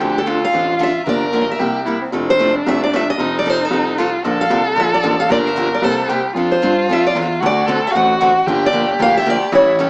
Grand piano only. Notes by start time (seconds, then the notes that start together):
0.01 D2
0.53 A1
1.07 G1
1.60 C2
2.12 F1
2.66 C2
3.18 F1
3.71 C2
4.24 A#1
4.50 C2
4.76 A#1
5.03 A1
5.30 G1
5.82 C2
6.35 F2
6.63 G2
6.89 F2
7.15 E2
7.42 D2
7.95 A1
8.47 G1
8.99 D2
9.52 A1